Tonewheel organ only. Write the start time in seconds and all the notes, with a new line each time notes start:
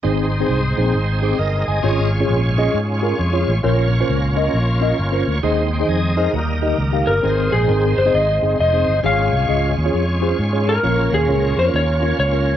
0.03 G#3 C4 D#4 C5
1.22 G4 C5
1.38 A#4 D#5
1.65 D#5 G#5
1.82 G#3 C#4 F4 C5
1.88 C#5
3.63 A#3 C#4 F4 C5
3.68 C#5
5.43 G#3 C4 D#4 C5
5.72 G5 C6
5.89 D#5 G#5
6.17 A#4 D#5
6.33 F#3 A#3 D#4 A#4
6.39 G3
7.24 G#3 C4 D#4 A#4
7.29 C5
9.03 G#3 C#4 F4 C#5
10.84 A#3 C#4 F4 C#5